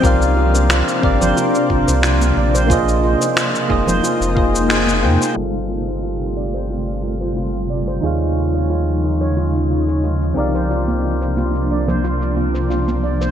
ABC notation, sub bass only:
X:1
M:4/4
L:1/16
Q:1/4=90
K:Gphr
V:1 name="Sub bass" clef=bass
C,,4- C,, z G,,, G,,, z2 G,,, C,,3 B,,,2- | B,,,3 z3 F,,, F,,, z F,,,4- F,,, F,, z | G,,,16 | E,,12- E,,2 C,,2- |
C,,16 |]